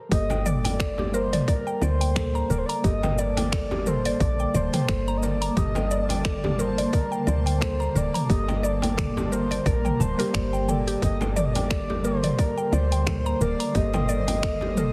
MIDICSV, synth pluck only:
0, 0, Header, 1, 2, 480
1, 0, Start_track
1, 0, Key_signature, -2, "minor"
1, 0, Tempo, 681818
1, 80, Time_signature, 4, 2, 24, 8
1, 10510, End_track
2, 0, Start_track
2, 0, Title_t, "Synth pluck"
2, 0, Program_c, 0, 84
2, 81, Note_on_c, 0, 67, 81
2, 201, Note_off_c, 0, 67, 0
2, 215, Note_on_c, 0, 79, 72
2, 316, Note_off_c, 0, 79, 0
2, 322, Note_on_c, 0, 74, 105
2, 441, Note_off_c, 0, 74, 0
2, 456, Note_on_c, 0, 79, 77
2, 556, Note_off_c, 0, 79, 0
2, 563, Note_on_c, 0, 69, 82
2, 689, Note_off_c, 0, 69, 0
2, 697, Note_on_c, 0, 67, 77
2, 791, Note_off_c, 0, 67, 0
2, 802, Note_on_c, 0, 70, 78
2, 928, Note_off_c, 0, 70, 0
2, 936, Note_on_c, 0, 74, 102
2, 1030, Note_off_c, 0, 74, 0
2, 1040, Note_on_c, 0, 74, 102
2, 1160, Note_off_c, 0, 74, 0
2, 1174, Note_on_c, 0, 79, 74
2, 1275, Note_off_c, 0, 79, 0
2, 1282, Note_on_c, 0, 74, 105
2, 1401, Note_off_c, 0, 74, 0
2, 1414, Note_on_c, 0, 79, 79
2, 1515, Note_off_c, 0, 79, 0
2, 1519, Note_on_c, 0, 69, 77
2, 1647, Note_off_c, 0, 69, 0
2, 1655, Note_on_c, 0, 82, 101
2, 1755, Note_off_c, 0, 82, 0
2, 1760, Note_on_c, 0, 70, 75
2, 1887, Note_off_c, 0, 70, 0
2, 1894, Note_on_c, 0, 82, 103
2, 1995, Note_off_c, 0, 82, 0
2, 2003, Note_on_c, 0, 67, 84
2, 2122, Note_off_c, 0, 67, 0
2, 2136, Note_on_c, 0, 79, 74
2, 2236, Note_off_c, 0, 79, 0
2, 2243, Note_on_c, 0, 74, 96
2, 2362, Note_off_c, 0, 74, 0
2, 2377, Note_on_c, 0, 79, 72
2, 2476, Note_off_c, 0, 79, 0
2, 2482, Note_on_c, 0, 69, 77
2, 2608, Note_off_c, 0, 69, 0
2, 2618, Note_on_c, 0, 67, 76
2, 2711, Note_off_c, 0, 67, 0
2, 2724, Note_on_c, 0, 70, 78
2, 2849, Note_off_c, 0, 70, 0
2, 2857, Note_on_c, 0, 74, 105
2, 2951, Note_off_c, 0, 74, 0
2, 2960, Note_on_c, 0, 74, 93
2, 3080, Note_off_c, 0, 74, 0
2, 3097, Note_on_c, 0, 79, 74
2, 3196, Note_off_c, 0, 79, 0
2, 3200, Note_on_c, 0, 74, 104
2, 3320, Note_off_c, 0, 74, 0
2, 3335, Note_on_c, 0, 79, 83
2, 3435, Note_off_c, 0, 79, 0
2, 3442, Note_on_c, 0, 69, 78
2, 3568, Note_off_c, 0, 69, 0
2, 3575, Note_on_c, 0, 82, 107
2, 3676, Note_off_c, 0, 82, 0
2, 3682, Note_on_c, 0, 70, 74
2, 3808, Note_off_c, 0, 70, 0
2, 3813, Note_on_c, 0, 82, 101
2, 3914, Note_off_c, 0, 82, 0
2, 3922, Note_on_c, 0, 67, 86
2, 4041, Note_off_c, 0, 67, 0
2, 4055, Note_on_c, 0, 79, 75
2, 4155, Note_off_c, 0, 79, 0
2, 4161, Note_on_c, 0, 74, 100
2, 4281, Note_off_c, 0, 74, 0
2, 4295, Note_on_c, 0, 79, 76
2, 4396, Note_off_c, 0, 79, 0
2, 4400, Note_on_c, 0, 69, 83
2, 4527, Note_off_c, 0, 69, 0
2, 4534, Note_on_c, 0, 67, 80
2, 4629, Note_off_c, 0, 67, 0
2, 4640, Note_on_c, 0, 70, 83
2, 4767, Note_off_c, 0, 70, 0
2, 4774, Note_on_c, 0, 74, 103
2, 4870, Note_off_c, 0, 74, 0
2, 4878, Note_on_c, 0, 74, 99
2, 4999, Note_off_c, 0, 74, 0
2, 5010, Note_on_c, 0, 79, 78
2, 5113, Note_off_c, 0, 79, 0
2, 5118, Note_on_c, 0, 74, 101
2, 5239, Note_off_c, 0, 74, 0
2, 5252, Note_on_c, 0, 79, 82
2, 5354, Note_off_c, 0, 79, 0
2, 5357, Note_on_c, 0, 69, 85
2, 5485, Note_off_c, 0, 69, 0
2, 5491, Note_on_c, 0, 82, 101
2, 5594, Note_off_c, 0, 82, 0
2, 5600, Note_on_c, 0, 70, 82
2, 5727, Note_off_c, 0, 70, 0
2, 5733, Note_on_c, 0, 82, 105
2, 5834, Note_off_c, 0, 82, 0
2, 5841, Note_on_c, 0, 67, 85
2, 5961, Note_off_c, 0, 67, 0
2, 5973, Note_on_c, 0, 79, 74
2, 6074, Note_off_c, 0, 79, 0
2, 6078, Note_on_c, 0, 74, 98
2, 6199, Note_off_c, 0, 74, 0
2, 6211, Note_on_c, 0, 79, 75
2, 6313, Note_off_c, 0, 79, 0
2, 6318, Note_on_c, 0, 69, 86
2, 6446, Note_off_c, 0, 69, 0
2, 6455, Note_on_c, 0, 67, 76
2, 6550, Note_off_c, 0, 67, 0
2, 6562, Note_on_c, 0, 70, 76
2, 6688, Note_off_c, 0, 70, 0
2, 6694, Note_on_c, 0, 74, 99
2, 6790, Note_off_c, 0, 74, 0
2, 6799, Note_on_c, 0, 74, 103
2, 6920, Note_off_c, 0, 74, 0
2, 6933, Note_on_c, 0, 79, 74
2, 7035, Note_off_c, 0, 79, 0
2, 7041, Note_on_c, 0, 81, 79
2, 7161, Note_off_c, 0, 81, 0
2, 7172, Note_on_c, 0, 70, 100
2, 7274, Note_off_c, 0, 70, 0
2, 7279, Note_on_c, 0, 74, 96
2, 7406, Note_off_c, 0, 74, 0
2, 7414, Note_on_c, 0, 79, 82
2, 7515, Note_off_c, 0, 79, 0
2, 7522, Note_on_c, 0, 79, 77
2, 7648, Note_off_c, 0, 79, 0
2, 7655, Note_on_c, 0, 67, 104
2, 7753, Note_off_c, 0, 67, 0
2, 7762, Note_on_c, 0, 67, 82
2, 7881, Note_off_c, 0, 67, 0
2, 7896, Note_on_c, 0, 79, 75
2, 7996, Note_off_c, 0, 79, 0
2, 8000, Note_on_c, 0, 74, 101
2, 8120, Note_off_c, 0, 74, 0
2, 8137, Note_on_c, 0, 79, 75
2, 8236, Note_off_c, 0, 79, 0
2, 8241, Note_on_c, 0, 69, 82
2, 8368, Note_off_c, 0, 69, 0
2, 8375, Note_on_c, 0, 67, 80
2, 8470, Note_off_c, 0, 67, 0
2, 8479, Note_on_c, 0, 70, 79
2, 8607, Note_off_c, 0, 70, 0
2, 8615, Note_on_c, 0, 74, 98
2, 8710, Note_off_c, 0, 74, 0
2, 8720, Note_on_c, 0, 74, 99
2, 8840, Note_off_c, 0, 74, 0
2, 8853, Note_on_c, 0, 79, 73
2, 8954, Note_off_c, 0, 79, 0
2, 8960, Note_on_c, 0, 74, 106
2, 9080, Note_off_c, 0, 74, 0
2, 9096, Note_on_c, 0, 79, 76
2, 9196, Note_off_c, 0, 79, 0
2, 9203, Note_on_c, 0, 69, 80
2, 9328, Note_off_c, 0, 69, 0
2, 9336, Note_on_c, 0, 82, 106
2, 9436, Note_off_c, 0, 82, 0
2, 9443, Note_on_c, 0, 70, 80
2, 9568, Note_off_c, 0, 70, 0
2, 9574, Note_on_c, 0, 82, 98
2, 9675, Note_off_c, 0, 82, 0
2, 9682, Note_on_c, 0, 67, 79
2, 9801, Note_off_c, 0, 67, 0
2, 9813, Note_on_c, 0, 79, 78
2, 9915, Note_off_c, 0, 79, 0
2, 9917, Note_on_c, 0, 74, 104
2, 10039, Note_off_c, 0, 74, 0
2, 10053, Note_on_c, 0, 79, 77
2, 10154, Note_off_c, 0, 79, 0
2, 10157, Note_on_c, 0, 69, 83
2, 10286, Note_off_c, 0, 69, 0
2, 10293, Note_on_c, 0, 67, 77
2, 10389, Note_off_c, 0, 67, 0
2, 10401, Note_on_c, 0, 70, 80
2, 10510, Note_off_c, 0, 70, 0
2, 10510, End_track
0, 0, End_of_file